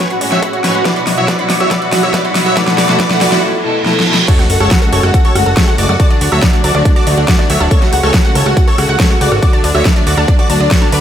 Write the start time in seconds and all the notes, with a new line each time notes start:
Already playing: riser
0.10 F#4 F#5 B5, closed hi-hat
0.21 A2 G#3 C#4 F#4 C#5 F#5, open hi-hat
0.32 F#4 C#5 E5 E6, snare, closed hi-hat
0.42 A2 G#3 C#4 F#4 F#5 B5, kick, closed hi-hat
0.53 F#4 C#5 F#5, closed hi-hat
0.64 A2 G#3 C#4 F#4 B4 C#5 C#6, snare, open hi-hat
0.75 F#4 F#5 B5, closed hi-hat
0.85 B2 F#3 E4 F#4 B4 D5 D6, kick, snare, closed hi-hat
0.96 F#4 F#5 B5, closed hi-hat
1.07 F#4 D5 F#5, snare, open hi-hat
1.17 B2 F#3 E4 F#4 C#5 E5 E6, closed hi-hat
1.28 F#4 B4 D5 D6, kick, snare, closed hi-hat
1.39 B2 F#3 E4 F#4 F#5 B5, closed hi-hat
1.50 F#4 D5 F#5, snare, open hi-hat
1.60 B2 F#3 E4 F#4 C#5 E5 E6, closed hi-hat
1.71 F#4 B4 D5 D6, kick, snare, closed hi-hat
1.82 F#4 F#5 B5, closed hi-hat
1.92 B2 F#3 E4 F#4 D5 F#5, kick, snare, open hi-hat
2.03 F#4 C#5 E5 E6, closed hi-hat
2.14 B2 F#3 E4 F#4 B4 D5 D6, kick, snare, closed hi-hat
2.25 F#4 F#5 B5, closed hi-hat
2.35 B2 F#3 E4 F#4 D5 F#5, snare, open hi-hat
2.46 F#4 C#5 E5 E6, closed hi-hat
2.57 B2 A3 E4 F#4 A4 B4 D5 D6, kick, snare, closed hi-hat
2.68 F#4 F#5 B5, snare, closed hi-hat
2.78 F#4 B4 D5 D6, snare, open hi-hat
2.89 B2 A3 E4 F#4 A4 F#5 B5, snare, closed hi-hat
2.99 F#4 B4 D5 D6, kick, snare, closed hi-hat
3.10 B2 A3 E4 F#4 A4 F#5 B5, snare, closed hi-hat
3.21 F#4 B4 D5 D6, snare, open hi-hat
3.32 B2 A3 E4 F#4 A4 F#5 B5, snare, open hi-hat
3.42 reverse cymbal
3.64 B2 A3 E4 A4
3.85 B2 A3 E4 A4, snare
4.00 snare
4.07 B2 A3 E4 A4
4.14 snare
4.28 C#3 G#3 A3 F#4 A4 C#5 C#6, kick, closed hi-hat, crash, sub drop
4.39 F#4 F#5, snare, closed hi-hat
4.50 F#1 F#4 A4 F#5, open hi-hat
4.60 F#1 C#3 G#3 A3 F#4 A4 C#5 C#6, cross-stick, closed hi-hat
4.71 F#4 F#5, kick, snare, closed hi-hat
4.82 C#3 G#3 A3 F#4 A4 F#5, closed hi-hat
4.92 F#1 F#4 A4 C#5 C#6, open hi-hat
5.03 F#1 C#3 G#3 A3 F#4 F#5, cross-stick, closed hi-hat
5.14 F#4 A4 F#5, kick, closed hi-hat
5.25 F#4 A4 C#5 C#6, closed hi-hat
5.35 F#1 C#3 G#3 A3 F#4 F#5, cross-stick, open hi-hat
5.46 F#1 F#4 A4 F#5, closed hi-hat
5.57 C#3 G#3 A3 F#4 A4 C#5 C#6, kick, snare, closed hi-hat
5.68 F#4 F#5, closed hi-hat
5.78 F#1 C#3 G#3 A3 F#4 A4 D5 D6, open hi-hat
5.89 F#2 F#4 F#5, cross-stick, closed hi-hat
6.00 D3 F#3 A3 F#4 D5 A5 D6, kick, closed hi-hat
6.10 D4 D5, closed hi-hat
6.21 D2 D4 F#4 D5, open hi-hat
6.32 D2 D3 F#3 A3 F#4 C#5 E5 A5 E6, cross-stick
6.43 D4 D5, kick, snare, closed hi-hat
6.53 D3 F#3 A3 D4 F#4 D5, closed hi-hat
6.64 D2 F#4 D5 A5 D6, open hi-hat
6.75 D2 D3 F#3 A3 D4 F#4 D5, cross-stick, closed hi-hat
6.85 D4 F#4 D5, kick, closed hi-hat
6.96 F#4 D5 A5 D6, closed hi-hat
7.07 D2 D3 F#3 A3 D4 F#4 D5, open hi-hat
7.17 D2 D4 F#4 D5, closed hi-hat
7.28 D3 F#3 A3 F#4 D5 A5 D6, kick, snare, closed hi-hat
7.39 D4 D5, snare, closed hi-hat
7.50 D2 D3 F#3 A3 F#4 C#5 E5 E6, open hi-hat
7.60 D1 D4 D5 A5, cross-stick
7.71 C#3 G#3 A3 F#4 A4 C#5 C#6, kick, closed hi-hat
7.82 F#4 F#5, snare, closed hi-hat
7.92 C#2 F#4 F#5, open hi-hat
8.03 C#2 C#3 G#3 A3 F#4 A4 C#5 C#6, cross-stick, closed hi-hat
8.14 F#4 F#5, kick, snare, closed hi-hat
8.25 C#3 G#3 A3 F#4 F#5, closed hi-hat
8.35 C#2 A4 C#5 C#6, open hi-hat
8.46 C#2 C#3 G#3 A3 F#4 F#5, cross-stick, closed hi-hat
8.57 F#4 F#5, kick, closed hi-hat
8.67 A4 C#5 C#6, closed hi-hat
8.78 C#2 C#3 G#3 A3 F#4 F#5, cross-stick, open hi-hat
8.89 C#2 F#4 F#5, closed hi-hat
9.00 C#3 G#3 A3 F#4 A4 C#5 C#6, kick, snare, closed hi-hat
9.10 F#4 F#5, closed hi-hat
9.21 C#2 C#3 G#3 A3 F#4 D5 F#5 D6, open hi-hat
9.32 G#1 F#4 A4 F#5, cross-stick, closed hi-hat
9.42 D3 F#3 A3 F#4 D5 D6, kick, closed hi-hat
9.53 D4 D5 A5, closed hi-hat
9.64 D2 D4 D5, open hi-hat
9.75 D2 D3 F#3 A3 F#4 C#5 E5 E6, cross-stick, closed hi-hat
9.85 D4 D5 A5, kick, snare, closed hi-hat
9.96 D3 F#3 A3 D4 F#4 D5, closed hi-hat
10.07 D2 F#4 D5 D6, open hi-hat
10.17 D2 D3 F#3 A3 D4 F#4 D5 A5, cross-stick, closed hi-hat
10.28 D4 D5, kick, closed hi-hat
10.39 F#4 D5 D6, closed hi-hat
10.50 D2 D3 F#3 A3 D4 F#4 D5 A5, open hi-hat
10.60 D2 D4 D5, closed hi-hat
10.71 D3 F#3 A3 F#4 A4 C#5 C#6, kick, snare, closed hi-hat
10.82 D4 D5 A5, snare, closed hi-hat
10.92 D2 D3 F#3 A3 D4 F#4 B4 D5 B5, open hi-hat